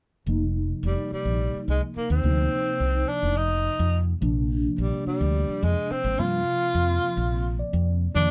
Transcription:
0.26 fretless electric bass F1, tine electric piano C3 F3 A#3 D#4
0.83 fretless electric bass F1, tenor saxophone G3
1.12 tenor saxophone G3, muted fretless electric bass stroke
1.25 fretless electric bass A#1
1.53 muted fretless electric bass stroke
1.68 fretless electric bass C2, tenor saxophone G#3
1.96 tenor saxophone A#3, muted fretless electric bass stroke
2.10 fretless electric bass D#2, tenor saxophone C4
2.23 fretless electric bass D2, tine electric piano C3 F3 A#3 D#4
2.80 fretless electric bass C2
3.08 tenor saxophone D4
3.23 fretless electric bass F1
3.37 tenor saxophone D#4
3.79 fretless electric bass F2
4.20 fretless electric bass A#1, tine electric piano C3 F3 A#3 D4
4.78 fretless electric bass A#1, tenor saxophone G3
5.06 tenor saxophone G3, muted fretless electric bass stroke
5.21 fretless electric bass D2
5.48 muted fretless electric bass stroke
5.63 fretless electric bass F2, tenor saxophone G#3
5.91 tenor saxophone C4, muted fretless electric bass stroke
6.04 fretless electric bass G#1
6.18 fretless electric bass G2, tine electric piano C3 F3 A#3 C4, tenor saxophone F4
6.75 fretless electric bass F2
7.17 fretless electric bass A#1
7.59 tine electric piano D5
7.73 fretless electric bass F2
8.15 fretless electric bass F2, tine electric piano C3 D#3 F3 A#3, tenor saxophone D4

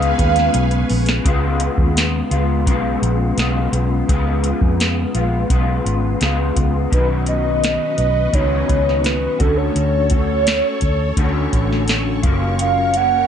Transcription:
Already playing: fingered electric bass C#2, clean electric guitar C#3 G#3 B3 F4, string machine B4 F5 G#5 C#6, soft synth lead F5
0.02 closed hi-hat
0.19 fingered electric bass D#2, kick, closed hi-hat
0.36 snare, closed hi-hat
0.54 fingered electric bass B1, closed hi-hat
0.71 closed hi-hat
0.90 fingered electric bass A#1, open hi-hat
1.06 snare, closed hi-hat
1.24 fingered electric bass C#2, clean electric guitar C#3 G#3 B3 F4, kick, closed hi-hat
1.60 closed hi-hat
1.78 fingered electric bass D#2, kick
1.97 snare, closed hi-hat
2.31 fingered electric bass C#2, clean electric guitar G#3 B3 F4, closed hi-hat
2.66 fingered electric bass B1, clean electric guitar C#3 G#3 B3 F4, kick, closed hi-hat
3.02 fingered electric bass A#1, closed hi-hat
3.37 fingered electric bass B1, clean electric guitar C#3 G#3 B3 F4, snare, closed hi-hat
3.72 fingered electric bass B1, closed hi-hat
4.08 fingered electric bass C#2, clean electric guitar C#3 G#3 B3 F4, kick, closed hi-hat
4.44 closed hi-hat
4.61 fingered electric bass F2, kick
4.80 snare, closed hi-hat
5.14 fingered electric bass A#1, clean electric guitar G#3 B3 F4, closed hi-hat
5.50 fingered electric bass B1, clean electric guitar C#3 G#3 B3 F4, kick, closed hi-hat
5.85 fingered electric bass G#1, closed hi-hat
6.20 fingered electric bass C#2, clean electric guitar C#3 G#3 B3 F4, snare, closed hi-hat
6.56 fingered electric bass C#2, kick, closed hi-hat
6.91 fingered electric bass B1, clean electric guitar B2 D#3 F#3, string machine B4 D#5 C#6, soft synth lead B4, kick, closed hi-hat
6.95 clean electric guitar C#4 D#4
7.26 soft synth lead D#5, closed hi-hat
7.64 snare, closed hi-hat
7.98 fingered electric bass B1, soft synth lead D#5, closed hi-hat
8.33 fingered electric bass C#2, clean electric guitar B2 D#3 F#3 C#4 D#4, soft synth lead C#5, kick, closed hi-hat
8.69 fingered electric bass C#2, kick, closed hi-hat
8.89 snare
9.04 soft synth lead B4, snare, closed hi-hat
9.39 fingered electric bass D2, clean electric guitar D3 A3 C#4 F#4, string machine A4 C#5, soft synth lead A4, kick, closed hi-hat
9.57 soft synth lead C#5
9.76 fingered electric bass D2, closed hi-hat
10.10 clean electric guitar A3 C#4 F#4, kick, closed hi-hat
10.47 snare, closed hi-hat
10.81 fingered electric bass D2, kick, closed hi-hat
11.17 fingered electric bass D2, clean electric guitar D3 A3 C#4 F#4, kick, closed hi-hat
11.53 fingered electric bass A1, kick, closed hi-hat
11.73 snare
11.88 snare, closed hi-hat
12.23 fingered electric bass F#1, clean electric guitar F#3 A#3 C#4 F4, string machine A#4 C#5, kick, closed hi-hat
12.59 soft synth lead F5, closed hi-hat
12.94 clean electric guitar A#3 C#4, soft synth lead F#5, closed hi-hat

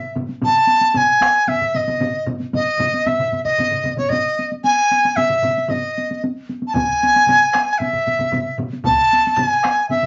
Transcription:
Already playing: dizi E5
0.15 taiko low-mid, taiko mid, taiko high
0.29 taiko high
0.42 dizi A5, taiko low-mid, taiko mid, taiko high
0.67 taiko high
0.81 taiko high
0.94 dizi G#5, taiko low-mid, taiko mid, taiko high
1.21 taiko rim, taiko high
1.47 dizi E5, taiko low-mid, taiko mid, taiko high
1.61 taiko low-mid, taiko mid
1.74 dizi D#5, taiko low-mid, taiko mid, taiko high
1.87 taiko low-mid, taiko mid, taiko high
2.00 taiko low-mid, taiko mid, taiko high
2.26 taiko low-mid, taiko mid, taiko high
2.40 taiko high
2.53 dizi D#5, taiko low-mid, taiko mid, taiko high
2.78 taiko low-mid, taiko mid, taiko high
2.94 taiko high
3.05 dizi E5, taiko low-mid, taiko mid, taiko high
3.18 taiko low-mid, taiko mid
3.32 taiko low-mid, taiko mid, taiko high
3.44 dizi D#5, taiko low-mid, taiko mid
3.58 taiko low-mid, taiko mid, taiko high
3.71 taiko low-mid, taiko mid
3.84 taiko low-mid, taiko mid, taiko high
3.97 dizi C#5, taiko low-mid, taiko mid, taiko high
4.09 dizi D#5, taiko low-mid, taiko mid, taiko high
4.39 taiko high
4.52 taiko high
4.64 dizi G#5, taiko high
4.91 taiko high
5.05 taiko high
5.16 dizi E5, taiko low-mid, taiko mid, taiko high
5.30 taiko low-mid, taiko mid
5.42 taiko low-mid, taiko mid, taiko high
5.58 taiko high
5.69 dizi D#5, taiko low-mid, taiko mid, taiko high
5.98 taiko high
6.11 taiko high
6.24 taiko high
6.49 taiko high
6.62 taiko high
6.67 dizi A5
6.74 dizi G#5, taiko, taiko low-mid, taiko mid, taiko high
7.03 taiko high
7.16 taiko high
7.27 taiko low-mid, taiko mid, taiko high
7.53 taiko rim, taiko high
7.73 dizi G#5
7.78 dizi E5, taiko low-mid, taiko mid, taiko high
7.93 taiko low-mid, taiko mid
8.06 taiko low-mid, taiko mid, taiko high
8.19 taiko low-mid, taiko mid, taiko high
8.32 taiko low-mid, taiko mid, taiko high
8.58 taiko low-mid, taiko mid, taiko high
8.73 taiko high
8.84 dizi A5, taiko, taiko low-mid, taiko mid, taiko high
9.13 taiko high
9.27 taiko high
9.36 dizi G#5, taiko low-mid, taiko mid, taiko high
9.64 taiko rim, taiko high
9.90 dizi E5, taiko low-mid, taiko mid, taiko high
10.03 taiko low-mid

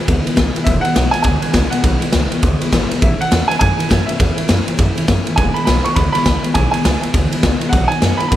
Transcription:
0.07 upright bass D2, steel-string acoustic guitar E3 G#3 B3 E4, kick, ride
0.24 steel-string acoustic guitar E3 G#3 B3 E4, muted upright bass stroke, ride
0.36 upright bass C#2, steel-string acoustic guitar E2 B2 E3 G#3 B3 E4, kick, snare, ride
0.54 steel-string acoustic guitar E3 G#3 B3 E4, muted upright bass stroke, ride
0.64 upright bass E1, steel-string acoustic guitar E2 B2 E3 G#3 B3 E4, upright piano E5, kick, ride
0.81 steel-string acoustic guitar E4, upright piano F#5, muted upright bass stroke, ride
0.86 steel-string acoustic guitar E3 G#3 B3
0.94 upright bass B1, steel-string acoustic guitar E2 B2 E3 G#3 B3 E4, snare, ride
1.11 steel-string acoustic guitar G#3 B3 E4, upright piano G#5, snare, ride
1.16 steel-string acoustic guitar E3
1.23 upright bass D2, steel-string acoustic guitar E3 G#3 B3 E4, upright piano G#5, kick, ride
1.42 steel-string acoustic guitar E3 G#3 B3 E4, muted upright bass stroke, ride
1.53 upright bass C#2, steel-string acoustic guitar E2 B2 E3 G#3 B3 E4, kick, snare, ride
1.70 steel-string acoustic guitar G#3 B3 E4, upright piano F#5, muted upright bass stroke, ride
1.75 steel-string acoustic guitar E3
1.84 upright bass B1, steel-string acoustic guitar E2 B2 E3 G#3 B3 E4, kick, ride
2.00 steel-string acoustic guitar E3 G#3 B3 E4, ride
2.13 upright bass C#2, steel-string acoustic guitar E2 B2 E3 G#3 B3 E4, snare, ride
2.31 steel-string acoustic guitar E3 G#3 B3 E4, muted upright bass stroke, ride
2.42 upright bass D2, steel-string acoustic guitar E3 G#3 B3 E4, kick, ride
2.60 steel-string acoustic guitar E3 G#3 B3 E4, muted upright bass stroke, ride
2.72 upright bass G#1, steel-string acoustic guitar E2 B2 E3 G#3 B3 E4, kick, snare, ride
2.91 steel-string acoustic guitar E3 G#3 B3 E4, muted upright bass stroke, ride
3.01 upright bass A1, steel-string acoustic guitar A2 E3 A3 C#4 E4, upright piano E5, kick, ride
3.19 steel-string acoustic guitar A3 C#4 E4, upright piano F#5, muted upright bass stroke, ride
3.31 upright bass E2, steel-string acoustic guitar A2 E3 A3 C#4 E4, snare, ride
3.48 steel-string acoustic guitar C#4 E4, upright piano G#5, muted upright bass stroke, snare, ride
3.52 steel-string acoustic guitar A3
3.59 upright bass F#2, steel-string acoustic guitar E3 A3 C#4 E4, upright piano G#5, kick, ride
3.79 steel-string acoustic guitar A3 C#4 E4, muted upright bass stroke, ride
3.89 upright bass F#2, steel-string acoustic guitar A2 E3 A3 C#4 E4, kick, snare, ride
4.06 steel-string acoustic guitar C#4 E4, upright piano E5, muted upright bass stroke, ride
4.11 steel-string acoustic guitar A3
4.19 upright bass E2, steel-string acoustic guitar A2 E3 A3 C#4 E4, kick, ride
4.37 steel-string acoustic guitar A3 C#4 E4, muted upright bass stroke, ride
4.48 upright bass F#2, steel-string acoustic guitar A2 E3 A3 C#4 E4, snare, ride
4.66 steel-string acoustic guitar A3 C#4 E4, muted upright bass stroke, ride
4.77 upright bass F#2, steel-string acoustic guitar E3 A3 C#4 E4, kick, ride
4.95 steel-string acoustic guitar A3 C#4 E4, muted upright bass stroke, ride
5.08 upright bass F#2, steel-string acoustic guitar A2 E3 A3 C#4 E4, kick, snare, ride
5.25 steel-string acoustic guitar A3 C#4 E4, muted upright bass stroke, ride
5.36 upright bass E1, steel-string acoustic guitar E2 B2 E3 G#3 B3 E4, upright piano G#5, kick, ride
5.54 steel-string acoustic guitar E3 G#3 B3 E4, upright piano B5, ride
5.65 upright bass B1, steel-string acoustic guitar E2 B2 E3 G#3 B3 E4, upright piano B5, snare, ride
5.84 steel-string acoustic guitar E3 G#3 B3 E4, upright piano C#6, muted upright bass stroke, ride
5.95 upright bass D2, steel-string acoustic guitar E3 G#3 B3 E4, upright piano B5, kick, ride
6.13 steel-string acoustic guitar G#3 B3 E4, upright piano B5, muted upright bass stroke, ride
6.17 steel-string acoustic guitar E3
6.24 upright bass C#2, steel-string acoustic guitar E2 B2 E3 G#3 B3 E4, kick, snare, ride
6.43 steel-string acoustic guitar E3 G#3 B3 E4, muted upright bass stroke, ride
6.54 upright bass B1, steel-string acoustic guitar E2 B2 E3 G#3 B3 E4, upright piano G#5, kick, ride
6.71 steel-string acoustic guitar G#3 B3 E4, upright piano G#5, ride
6.75 steel-string acoustic guitar E3
6.84 upright bass C#2, steel-string acoustic guitar E2 B2 E3 G#3 B3 E4, snare, ride
7.02 steel-string acoustic guitar E3 G#3 B3 E4, muted upright bass stroke, ride
7.14 upright bass D2, steel-string acoustic guitar E3 G#3 B3 E4, kick, ride
7.32 steel-string acoustic guitar E3 G#3 B3 E4, muted upright bass stroke, ride
7.43 upright bass C#2, steel-string acoustic guitar E2 B2 E3 G#3 B3 E4, kick, snare, ride
7.61 steel-string acoustic guitar E3 G#3 B3 E4, muted upright bass stroke, ride
7.69 upright bass B1, upright piano F#5, kick, ride
7.73 steel-string acoustic guitar B2 F#3 B3 D#4 F#4
7.88 steel-string acoustic guitar F#4, upright piano G#5, muted upright bass stroke, ride
7.93 steel-string acoustic guitar B3 D#4
8.02 upright bass F#2, steel-string acoustic guitar B2 F#3 B3 D#4 F#4, snare, ride
8.17 steel-string acoustic guitar F#4, upright piano B5, muted upright bass stroke, ride
8.23 steel-string acoustic guitar B3 D#4
8.28 upright bass A2, steel-string acoustic guitar F#3, upright piano B5, kick, ride
8.33 steel-string acoustic guitar B3

